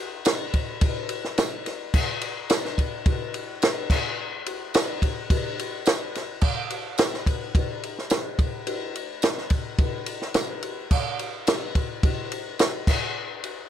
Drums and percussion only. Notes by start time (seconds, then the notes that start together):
0.25 snare, ride, tambourine
0.54 kick, ride
0.81 kick, ride
1.09 ride
1.25 snare
1.38 snare, ride, tambourine
1.66 snare, ride
1.94 kick, crash
2.21 ride
2.50 snare, ride, tambourine
2.65 snare
2.78 kick, ride
3.06 kick, ride
3.34 ride
3.62 snare, ride, tambourine
3.90 kick, snare, crash
4.46 ride
4.74 snare, ride, tambourine
5.02 kick, ride
5.30 kick, ride
5.59 ride
5.86 snare, ride, tambourine
6.15 snare, ride
6.41 kick, crash
6.70 ride
6.98 snare, ride, tambourine
7.14 snare
7.26 kick, ride
7.55 kick, ride
7.83 ride
7.99 snare
8.10 snare, ride, tambourine
8.39 kick, ride
8.67 ride
8.95 ride
9.22 snare, ride, tambourine
9.38 snare
9.50 kick, ride
9.78 kick, ride
10.06 ride
10.22 snare
10.34 snare, ride, tambourine
10.62 ride
10.91 kick, crash
11.19 ride
11.47 snare, ride, tambourine
11.75 kick, ride
12.03 kick, ride
12.32 ride
12.59 snare, ride, tambourine
12.87 kick, snare, crash
13.44 ride